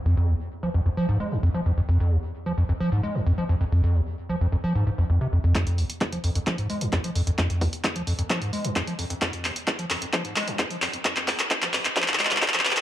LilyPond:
<<
  \new Staff \with { instrumentName = "Acid bass" } { \clef bass \time 4/4 \key ees \mixolydian \tempo 4 = 131 f,16 f,16 ees,16 r8 f16 f,16 f,16 f16 aes,16 aes16 f,16 f,16 f16 f,16 f,16 | f,16 f,16 ees,16 r8 f16 f,16 f,16 f16 aes,16 aes16 f,16 f,16 f16 f,16 f,16 | f,16 f,16 ees,16 r8 f16 f,16 f,16 f16 aes,16 aes,16 f,16 f,16 c16 f,16 f,16 | f,16 f,16 ees,16 r8 f16 f,16 f,16 f16 aes,16 aes16 f,16 f,16 f16 f,16 f,16 |
f,16 f,16 ees,16 r8 f16 f,16 f,16 f16 aes,16 aes16 f,16 f,16 f16 f,16 f,16 | f,16 f,16 ees,16 r8 f16 f,16 f,16 f16 aes,16 aes16 f,16 f,16 f16 f,16 f,16 | f,16 f,16 ees,16 r8 f16 f,16 f,16 f16 aes,16 aes16 f,16 f,16 f16 f,16 f,16 | }
  \new DrumStaff \with { instrumentName = "Drums" } \drummode { \time 4/4 r4 r4 r4 r4 | r4 r4 r4 r4 | r4 r4 r4 r4 | <hc hh bd>16 hh16 hho16 hh16 <hc hh bd>16 hh16 hho16 hh16 <hc hh bd>16 hh16 hho16 hh16 <hc hh bd>16 hh16 hho16 hh16 |
<hc hh bd>16 hh16 <hho bd>16 hh16 <hc hh bd>16 hh16 hho16 hh16 <hc hh bd>16 hh16 hho16 hh16 <hc hh bd>16 hh16 hho16 hh16 | <hc hh bd>16 hh16 <hc hho>16 hh16 <hc hh bd>16 hh16 <hc hho>16 hh16 <hc hh bd>16 hh16 <hc hho>16 hh16 <hc hh bd>16 hh16 <hc hho>16 hh16 | <hc hh bd>16 <hc hh>16 <hc hho bd>16 <hc hh>16 <hc hh bd>16 <hc hh>16 <hc hho>16 <hc hh>16 <hc hh bd>32 hc32 <hc hh>32 hc32 <hc hho>32 hc32 <hc hh>32 hc32 <hc hh bd>32 hc32 <hc hh>32 hc32 <hc hho>32 hc32 <hc hh>16 | }
>>